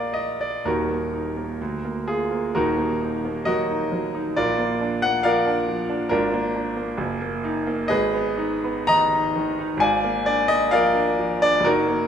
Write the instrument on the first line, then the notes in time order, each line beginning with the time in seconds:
grand piano
Already playing: A#1 A#3 A#4 D5 D#5 F5
0.14 D#5
0.41 D5
0.65 D#1 D#2 D#4 F#4 A#4
0.89 A#3
1.13 D#4
1.37 A#3
1.61 D2
1.85 A#3
2.08 F4 G#4
2.31 A#3
2.54 D#1 D#2 D#4 F#4 A#4
2.77 A#3
3.01 D#4
3.25 A#3
3.45 F#3 F#4 A#4 D#5
3.70 D#4
3.92 F#3
4.15 D#4
4.36 A#1 F4 A#4 D5
4.58 A#3
4.81 D4
5.02 A#3 F#5
5.23 F3 A#4 D5 F5
5.46 D4
5.67 F3
5.89 D4
6.09 G#1 D4 F4 A#4
6.34 A#3
6.55 D4
6.77 A#3
6.97 F#1
7.21 A#3
7.44 D#4
7.67 A#3
7.88 G#1 G#4 B4 D#5
8.14 B3
8.37 D#4
8.64 B3
8.87 D#3 D#5 A#5
9.14 D#4
9.36 D#3
9.59 D#4
9.77 G#1 F5 G#5
9.82 D5
10.04 A#3
10.26 D4 D5
10.48 A#3 D#5
10.71 F3 A#4 D5 F5
10.95 D4
11.18 F3
11.42 D4 D5
11.60 F#1
11.64 D#4 F#4 A#4
11.88 A#3